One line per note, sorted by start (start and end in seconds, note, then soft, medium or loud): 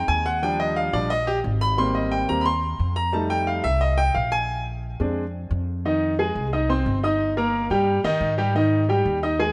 0.00 0.38 G#3 medium
0.00 0.38 C4 medium
0.00 0.39 D#4 medium
0.08 0.87 D#2 medium
0.08 0.25 G#5 loud
0.26 0.42 F#5 medium
0.42 0.91 F3 medium
0.42 0.91 G3 soft
0.42 0.91 D4 medium
0.42 0.59 G5 loud
0.60 0.76 D#5 medium
0.76 0.93 F5 loud
0.93 1.41 A#1 medium
0.93 1.08 F3 medium
0.93 1.09 G3 soft
0.93 1.09 D4 medium
0.93 1.10 D5 medium
1.10 1.27 D#5 loud
1.27 1.37 G4 loud
1.44 2.23 G#1 medium
1.61 1.78 B5 loud
1.77 2.26 G3 medium
1.77 2.27 A#3 soft
1.77 2.27 C4 medium
1.77 1.95 C6 loud
1.95 2.11 D#5 medium
2.11 2.28 G5 loud
2.28 2.76 D#2 medium
2.28 2.44 G3 soft
2.28 2.44 A#3 soft
2.28 2.44 C4 medium
2.28 2.45 A#5 loud
2.41 2.44 B5 medium
2.46 2.93 C6 loud
2.79 3.59 F2 medium
2.96 3.13 A#5 loud
3.13 3.61 G3 medium
3.13 3.62 A3 medium
3.13 3.62 D#4 medium
3.13 3.30 A5 medium
3.30 3.47 G5 loud
3.47 3.64 F5 medium
3.64 4.12 C2 medium
3.64 3.81 E5 loud
3.81 3.98 D#5 medium
3.98 4.14 G5 loud
4.14 4.94 A#1 medium
4.14 4.31 F5 medium
4.32 4.64 G#5 loud
5.00 5.47 F2 medium
5.00 5.22 G#3 medium
5.00 5.23 C4 soft
5.00 5.23 D4 medium
5.51 6.30 F2 medium
5.85 6.13 D#3 medium
5.85 6.13 D#4 medium
5.85 6.13 D#5 medium
6.19 6.46 G#3 medium
6.19 6.47 G#4 medium
6.19 6.47 G#5 medium
6.35 6.83 C2 medium
6.53 6.67 D#4 medium
6.53 6.67 D#5 medium
6.53 6.67 D#6 medium
6.69 6.97 C4 medium
6.69 6.97 C5 medium
6.69 6.97 C6 medium
6.86 7.65 G1 medium
7.03 7.31 D#4 medium
7.03 7.31 D#5 medium
7.03 7.31 D#6 medium
7.37 7.65 A#3 medium
7.37 7.65 A#4 medium
7.37 7.65 A#5 medium
7.70 8.02 G2 medium
7.70 7.98 G3 medium
7.70 7.99 G4 medium
7.70 7.99 G5 medium
8.04 8.20 G2 medium
8.04 8.32 D#3 loud
8.04 8.32 D#4 loud
8.04 8.32 D#5 medium
8.21 9.00 G#2 medium
8.38 8.52 G3 medium
8.38 8.52 G4 medium
8.38 8.52 G5 medium
8.55 8.83 D#3 medium
8.55 8.83 D#4 medium
8.55 8.83 D#5 medium
8.89 9.17 G3 medium
8.89 9.17 G4 medium
8.89 9.17 G5 medium
9.05 9.52 D#2 medium
9.23 9.37 D#4 medium
9.23 9.37 D#5 medium
9.23 9.37 D#6 medium
9.39 9.52 G#3 medium
9.39 9.52 G#4 medium
9.39 9.52 G#5 medium